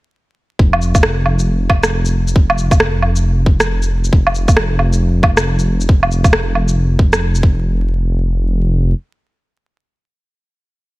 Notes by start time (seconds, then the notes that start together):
0.59 F1, kick
0.73 low woodblock
0.82 shaker
0.95 kick, low woodblock, shaker
1.03 cross-stick
1.26 low woodblock
1.39 shaker
1.70 kick, low woodblock
1.83 cross-stick, shaker
2.05 shaker
2.28 shaker
2.36 kick
2.50 low woodblock
2.58 shaker
2.71 kick, low woodblock, shaker
2.80 cross-stick
3.02 low woodblock
3.16 shaker
3.46 kick
3.60 cross-stick, shaker
3.82 shaker
4.04 shaker
4.12 F1, kick
4.27 low woodblock
4.35 shaker
4.48 kick, low woodblock, shaker
4.57 cross-stick
4.79 low woodblock
4.93 shaker
5.23 kick, low woodblock
5.37 cross-stick, shaker
5.59 shaker
5.81 shaker
5.89 kick
6.03 low woodblock
6.12 shaker
6.24 kick, low woodblock, shaker
6.33 cross-stick
6.55 low woodblock
6.68 shaker
6.99 kick
7.13 cross-stick, shaker
7.35 shaker
7.43 F1, kick